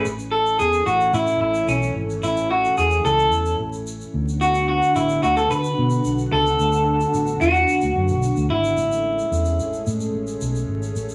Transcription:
0.03 0.59 A1 medium
0.03 4.09 E3 medium
0.03 4.09 A3 medium
0.03 4.09 C#4 medium
0.03 shaker medium
0.19 shaker soft
0.31 0.59 A4 loud
0.46 shaker soft
0.59 0.81 E2 medium
0.59 0.84 G#4 loud
0.59 shaker medium
0.73 shaker soft
0.86 1.13 A1 loud
0.86 1.14 F#4 medium
0.86 shaker soft
1.01 shaker soft
1.13 1.35 A2 medium
1.13 1.40 E4 medium
1.13 shaker medium
1.27 shaker medium
1.40 1.62 A1 medium
1.40 1.66 E4 medium
1.54 shaker soft
1.68 1.90 B1 loud
1.68 1.94 C#4 medium
1.68 shaker medium
1.82 shaker soft
1.95 2.17 G#1 medium
2.10 shaker soft
2.23 2.66 A1 loud
2.23 2.50 E4 medium
2.23 shaker medium
2.37 shaker soft
2.51 2.76 F#4 medium
2.65 shaker soft
2.77 2.99 E2 medium
2.77 3.03 G#4 medium
2.77 shaker medium
2.91 shaker soft
3.05 3.31 C#2 medium
3.05 3.55 A4 loud
3.05 shaker soft
3.19 shaker soft
3.31 3.53 E2 medium
3.31 shaker medium
3.45 shaker soft
3.59 4.03 A1 medium
3.73 shaker soft
3.87 shaker medium
4.01 shaker soft
4.14 4.79 D2 loud
4.14 8.73 D3 medium
4.14 8.73 B3 medium
4.14 8.73 F#4 medium
4.28 shaker soft
4.41 4.66 F#4 loud
4.41 shaker medium
4.54 shaker medium
4.68 4.94 F#4 medium
4.82 shaker soft
4.96 5.17 A1 medium
4.96 5.23 E4 medium
4.96 shaker medium
5.09 shaker medium
5.23 5.45 D2 medium
5.23 5.36 F#4 loud
5.23 shaker soft
5.37 5.49 A4 medium
5.37 shaker soft
5.51 5.72 D3 loud
5.51 6.32 B4 medium
5.51 shaker medium
5.64 shaker medium
5.78 6.00 B2 medium
5.90 shaker soft
6.05 6.27 B1 medium
6.05 shaker medium
6.18 shaker soft
6.32 6.54 C#2 medium
6.32 7.44 A4 loud
6.46 shaker soft
6.59 7.03 D2 loud
6.59 shaker medium
6.73 shaker medium
7.00 shaker soft
7.14 7.36 A1 medium
7.14 shaker medium
7.27 shaker soft
7.41 7.63 E2 medium
7.41 8.46 F#4 medium
7.41 shaker soft
7.55 shaker soft
7.68 shaker medium
7.81 7.93 D2 medium
7.81 shaker medium
7.96 8.11 F#2 medium
8.08 8.31 B1 medium
8.08 shaker soft
8.22 shaker medium
8.36 8.47 D2 medium
8.36 shaker soft
8.50 8.72 G#1 medium
8.50 9.82 E4 medium
8.64 shaker soft
8.77 9.21 A1 loud
8.77 11.15 G#3 medium
8.77 11.15 A3 medium
8.77 11.15 C#4 medium
8.77 shaker medium
8.92 shaker medium
9.19 shaker soft
9.31 9.59 E2 medium
9.31 shaker medium
9.45 shaker medium
9.59 9.81 A1 medium
9.59 shaker soft
9.73 shaker soft
9.87 10.08 A2 loud
9.87 shaker medium
10.00 shaker medium
10.14 10.36 A1 medium
10.27 shaker soft
10.41 10.63 B1 loud
10.41 shaker medium
10.55 shaker soft
10.68 10.90 G#1 medium
10.83 shaker soft
10.95 11.15 A1 loud
10.95 shaker medium
11.09 shaker medium

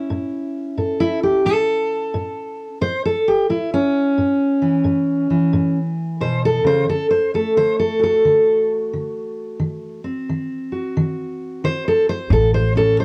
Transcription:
0.00 2.67 C#4 soft
0.00 1.00 E4 soft
0.10 0.73 A2 medium
0.77 1.41 A2 medium
0.77 1.45 A4 medium
1.00 1.23 E4 loud
1.23 1.46 G4 medium
1.45 2.09 A2 medium
1.45 2.81 A4 medium
2.14 2.77 A2 medium
2.81 3.45 A2 medium
2.81 3.04 C5 medium
3.05 3.28 A4 medium
3.28 3.50 G4 medium
3.49 4.13 A2 medium
3.49 3.73 E4 medium
3.74 5.78 C#4 loud
4.18 4.81 A2 medium
4.62 5.29 E3 soft
4.84 5.48 A2 medium
5.30 6.91 E3 soft
5.53 6.17 A2 medium
6.21 6.64 B2 medium
6.21 6.44 C5 medium
6.45 6.66 A4 loud
6.64 6.89 C#3 medium
6.64 6.89 C5 loud
6.89 7.53 D3 medium
6.89 7.10 A4 medium
7.11 7.34 C5 medium
7.34 10.04 A3 medium
7.34 7.57 A4 medium
7.57 8.20 D3 medium
7.57 7.79 C5 loud
7.79 8.02 A4 loud
7.99 9.58 F#4 soft
8.03 8.71 A4 medium
8.25 8.88 D3 medium
8.93 9.56 D3 medium
9.60 10.23 D#3 medium
10.04 12.29 C4 soft
10.29 10.92 D#3 medium
10.72 12.29 F#4 soft
10.97 11.59 D#3 medium
11.64 12.27 D#3 medium
11.64 11.87 C5 loud
11.88 12.09 A4 medium
12.09 12.32 C5 loud
12.30 13.05 A1 loud
12.30 12.94 A2 medium
12.30 12.54 A4 loud
12.54 12.76 C5 loud
12.75 13.05 C#4 soft
12.75 12.99 A4 loud
12.99 13.05 A2 medium
12.99 13.05 C5 medium

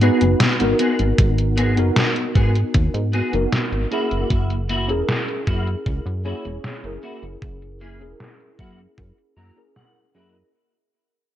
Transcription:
0.00 0.10 G#2 loud
0.00 0.21 B3 medium
0.00 0.56 B3 medium
0.00 0.56 D#4 medium
0.00 0.22 F#4 medium
0.00 0.56 F#4 medium
0.00 0.22 G#4 medium
0.00 0.56 B4 medium
0.00 closed hi-hat soft
0.21 0.35 F#1 medium
0.21 closed hi-hat soft
0.40 snare loud
0.40 closed hi-hat medium
0.59 0.74 G#1 medium
0.59 1.72 B3 medium
0.59 1.72 D#4 medium
0.59 1.73 F#4 medium
0.59 1.73 A#4 medium
0.59 closed hi-hat soft
0.79 0.99 B3 medium
0.79 0.99 F#4 medium
0.79 1.00 G#4 loud
0.79 closed hi-hat medium
0.99 1.13 G#1 medium
0.99 closed hi-hat soft
1.18 1.79 G#1 loud
1.18 kick loud
1.18 closed hi-hat medium
1.38 closed hi-hat soft
1.57 1.77 B3 medium
1.57 1.77 F#4 medium
1.57 1.77 G#4 loud
1.57 closed hi-hat medium
1.76 1.91 F#1 loud
1.76 3.28 B3 medium
1.76 3.28 D#4 medium
1.76 3.29 F#4 medium
1.76 3.29 A#4 medium
1.76 closed hi-hat soft
1.96 snare loud
1.96 closed hi-hat medium
2.16 closed hi-hat soft
2.35 2.64 G#2 medium
2.35 2.55 B3 medium
2.35 2.55 F#4 medium
2.35 2.56 G#4 loud
2.35 kick loud
2.35 closed hi-hat medium
2.55 closed hi-hat soft
2.74 2.89 D#2 loud
2.74 kick loud
2.74 closed hi-hat medium
2.94 3.22 G#2 medium
2.94 closed hi-hat soft
3.13 3.33 B3 medium
3.13 3.33 F#4 medium
3.13 3.34 G#4 medium
3.13 closed hi-hat soft
3.33 3.47 F#1 medium
3.33 3.87 B3 medium
3.33 3.87 D#4 medium
3.33 3.87 F#4 medium
3.33 3.87 A#4 medium
3.33 closed hi-hat soft
3.52 snare loud
3.52 closed hi-hat medium
3.72 3.86 G#1 medium
3.72 closed hi-hat soft
3.91 4.54 A#3 medium
3.91 4.26 C#4 medium
3.91 4.27 E4 medium
3.91 4.54 E4 medium
3.91 4.54 F#4 loud
3.91 4.27 G#4 medium
3.91 4.27 A#4 medium
3.91 closed hi-hat medium
4.11 4.25 F#1 medium
4.11 closed hi-hat soft
4.30 4.91 F#1 medium
4.30 kick loud
4.30 closed hi-hat medium
4.50 closed hi-hat soft
4.69 4.89 A#3 medium
4.69 4.89 E4 medium
4.69 4.89 F#4 medium
4.69 closed hi-hat medium
4.88 5.03 E1 loud
4.88 6.20 C#4 medium
4.88 6.21 E4 medium
4.88 6.21 G#4 medium
4.88 6.21 A#4 medium
4.88 closed hi-hat soft
5.09 snare loud
5.09 closed hi-hat medium
5.28 closed hi-hat soft
5.47 5.75 F#2 medium
5.47 5.67 A#3 medium
5.47 5.67 E4 medium
5.47 5.67 F#4 loud
5.47 kick loud
5.47 closed hi-hat medium
5.67 closed hi-hat soft
5.86 6.00 C#2 loud
5.86 kick loud
5.86 closed hi-hat medium
6.06 6.34 F#2 loud
6.06 closed hi-hat soft
6.25 6.45 A#3 medium
6.25 6.79 C#4 medium
6.25 6.79 E4 medium
6.25 6.45 E4 medium
6.25 6.45 F#4 medium
6.25 6.79 G#4 medium
6.25 6.80 C#5 medium
6.25 closed hi-hat soft
6.45 6.59 E1 medium
6.45 closed hi-hat soft
6.64 snare loud
6.64 closed hi-hat medium
6.83 6.98 F#1 medium
6.83 7.95 C#4 medium
6.83 7.96 E4 medium
6.83 7.96 G#4 medium
6.83 7.97 A#4 medium
6.83 closed hi-hat soft
7.03 7.23 A#3 medium
7.03 7.23 E4 medium
7.03 7.23 F#4 medium
7.03 closed hi-hat medium
7.23 7.37 F#1 medium
7.23 closed hi-hat soft
7.42 8.02 F#1 medium
7.42 kick loud
7.42 closed hi-hat medium
7.62 closed hi-hat soft
7.81 8.01 A#3 medium
7.81 8.01 E4 medium
7.81 8.01 G#4 loud
7.81 closed hi-hat medium
7.99 8.15 E1 medium
7.99 9.51 C#4 medium
7.99 9.52 E4 medium
7.99 9.52 G#4 medium
7.99 9.53 A#4 medium
7.99 closed hi-hat soft
8.20 snare loud
8.20 closed hi-hat medium
8.40 closed hi-hat soft
8.59 8.87 F#2 medium
8.59 8.79 A#3 medium
8.59 8.79 E4 medium
8.59 8.79 F#4 loud
8.59 kick loud
8.59 closed hi-hat medium
8.79 closed hi-hat soft
8.98 9.12 F#2 medium
8.98 kick loud
8.98 closed hi-hat medium
9.18 closed hi-hat soft
9.37 9.51 F#2 medium
9.37 9.57 A#3 medium
9.37 9.57 E4 medium
9.37 9.57 F#4 medium
9.37 9.73 A#5 medium
9.37 closed hi-hat soft
9.56 10.10 C#4 medium
9.56 10.10 E4 medium
9.56 10.11 G#4 medium
9.56 10.11 A#4 medium
9.56 closed hi-hat soft
9.76 10.12 F#5 medium
9.76 snare loud
9.76 closed hi-hat medium
9.96 closed hi-hat soft
10.15 10.43 F#2 medium
10.15 10.35 A#3 medium
10.15 10.50 C#4 medium
10.15 10.35 E4 medium
10.15 10.50 E4 medium
10.15 10.35 F#4 medium
10.15 10.50 G#4 medium
10.15 10.51 A#4 medium
10.15 10.51 D#5 medium
10.15 closed hi-hat medium

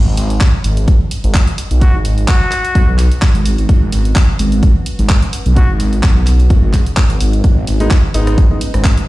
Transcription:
0.00 0.16 G#1 loud
0.00 9.08 C#4 medium
0.17 0.39 G#1 loud
0.17 open hi-hat loud
0.22 9.08 F#4 medium
0.28 9.08 B4 medium
0.28 4.06 D#5 medium
0.28 closed hi-hat medium
0.41 kick loud
0.41 clap loud
0.41 closed hi-hat medium
0.64 0.99 G#1 loud
0.64 open hi-hat loud
0.77 closed hi-hat medium
0.88 kick loud
0.88 closed hi-hat medium
1.11 open hi-hat loud
1.24 1.45 G#1 loud
1.24 closed hi-hat medium
1.34 kick loud
1.34 clap loud
1.34 closed hi-hat medium
1.47 closed hi-hat medium
1.58 open hi-hat loud
1.71 1.92 B1 medium
1.71 closed hi-hat medium
1.81 1.96 F#4 medium
1.81 kick loud
1.81 closed hi-hat medium
1.94 2.27 G#1 loud
2.05 open hi-hat loud
2.18 closed hi-hat medium
2.28 2.94 F#4 loud
2.28 kick loud
2.28 clap loud
2.28 closed hi-hat medium
2.52 clap soft
2.52 open hi-hat loud
2.65 closed hi-hat medium
2.75 2.86 B1 loud
2.75 kick loud
2.75 closed hi-hat medium
2.88 3.09 B1 loud
2.98 clap soft
2.98 open hi-hat loud
3.12 closed hi-hat soft
3.22 kick loud
3.22 clap loud
3.22 closed hi-hat medium
3.35 3.56 G#1 loud
3.35 closed hi-hat medium
3.46 open hi-hat loud
3.58 3.67 G#1 medium
3.58 closed hi-hat soft
3.69 3.91 G#1 loud
3.69 kick loud
3.69 closed hi-hat medium
3.92 4.14 G#1 medium
3.92 open hi-hat loud
4.03 7.81 F#5 medium
4.03 closed hi-hat soft
4.16 kick loud
4.16 clap loud
4.16 closed hi-hat medium
4.39 4.74 G#1 loud
4.39 open hi-hat loud
4.52 closed hi-hat soft
4.63 kick loud
4.63 closed hi-hat medium
4.86 open hi-hat loud
4.99 5.20 G#1 medium
4.99 closed hi-hat soft
5.09 kick loud
5.09 clap loud
5.09 closed hi-hat medium
5.22 closed hi-hat medium
5.33 open hi-hat loud
5.46 5.67 B1 medium
5.46 closed hi-hat soft
5.56 5.71 F#4 medium
5.56 kick loud
5.56 closed hi-hat medium
5.69 6.02 G#1 medium
5.80 open hi-hat loud
5.93 closed hi-hat soft
6.03 6.49 B1 medium
6.03 kick loud
6.03 clap loud
6.03 closed hi-hat medium
6.27 clap soft
6.27 open hi-hat loud
6.40 closed hi-hat soft
6.50 6.84 G#1 loud
6.50 kick loud
6.50 closed hi-hat medium
6.73 kick medium
6.73 clap soft
6.73 open hi-hat loud
6.86 closed hi-hat soft
6.97 kick loud
6.97 clap loud
6.97 closed hi-hat medium
7.10 7.19 G#1 loud
7.10 closed hi-hat medium
7.21 7.42 G#1 loud
7.21 open hi-hat loud
7.33 closed hi-hat soft
7.44 7.66 G#1 loud
7.44 kick loud
7.44 closed hi-hat medium
7.67 7.89 G#1 medium
7.67 open hi-hat loud
7.78 7.87 G#3 medium
7.78 7.87 B3 medium
7.78 7.87 D#4 medium
7.78 9.08 D#5 medium
7.78 closed hi-hat soft
7.91 kick loud
7.91 clap loud
7.91 closed hi-hat medium
8.14 8.49 G#1 loud
8.14 8.48 G#3 medium
8.14 8.48 B3 medium
8.14 8.48 D#4 loud
8.14 open hi-hat loud
8.27 cross-stick medium
8.27 closed hi-hat soft
8.38 kick loud
8.38 closed hi-hat medium
8.51 8.57 G#3 medium
8.51 8.57 B3 medium
8.51 8.57 D#4 medium
8.61 open hi-hat loud
8.74 8.95 G#1 loud
8.74 cross-stick medium
8.74 closed hi-hat soft
8.84 kick loud
8.84 clap loud
8.84 closed hi-hat medium
8.97 closed hi-hat medium

